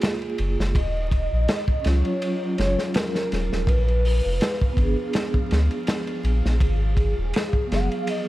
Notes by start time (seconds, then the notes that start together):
Already playing: A#3 F4 G#4
0.01 snare, ride
0.22 ride
0.38 F#1, ride
0.58 F#1, snare
0.74 D#1 F3 D#5 F5, kick, ride
1.11 kick, ride
1.32 A#1
1.48 snare, ride
1.68 kick
1.81 C#2 C#4, ride
1.85 F#3 F4 C#5, snare
2.05 ride
2.22 ride
2.58 F#1, snare, ride
2.79 snare
2.94 A#4, snare, ride
3.15 snare
3.32 D#1, snare, ride
3.52 D#1, snare
3.67 A#1 B4, kick, ride
3.88 ride
4.05 open hi-hat
4.25 F1
4.41 snare, ride
4.61 kick
4.73 B3, kick
4.77 G#1 D4, ride
4.82 G#4
5.13 snare, ride
5.34 kick
5.51 D2, snare, ride
5.71 ride
5.87 snare, ride
6.07 ride
6.24 A#1, ride
6.45 A#1, snare
6.60 G#1 G#4, kick, ride
6.97 kick, ride
7.17 D#1
7.34 snare, ride
7.53 kick
7.67 B3
7.71 F#1 F#3 F5, snare, ride
7.75 G#4
7.80 F#5
7.88 F5, ride
8.07 D#5, ride